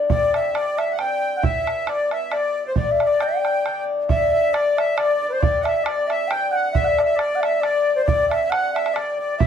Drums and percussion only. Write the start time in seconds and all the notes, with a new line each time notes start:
0.10 bodhran
0.34 bodhran
0.55 bodhran
0.78 bodhran
0.99 bodhran
1.43 bodhran
1.67 bodhran
1.87 bodhran
2.11 bodhran
2.32 bodhran
2.76 bodhran
3.00 bodhran
3.20 bodhran
3.45 bodhran
3.66 bodhran
4.09 bodhran
4.54 bodhran
4.78 bodhran
4.98 bodhran
5.43 bodhran
5.65 bodhran
5.86 bodhran
6.10 bodhran
6.31 bodhran
6.75 bodhran
6.98 bodhran
7.19 bodhran
7.43 bodhran
7.63 bodhran
8.08 bodhran
8.31 bodhran
8.52 bodhran
8.76 bodhran
8.86 bodhran
8.96 bodhran
9.40 bodhran